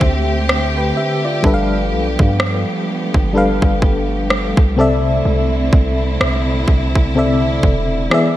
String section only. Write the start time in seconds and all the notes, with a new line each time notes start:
Already playing: D3 A3 C4 G4
1.44 F3 A3 B3
4.77 D3 C4 E4
8.11 G#3 B3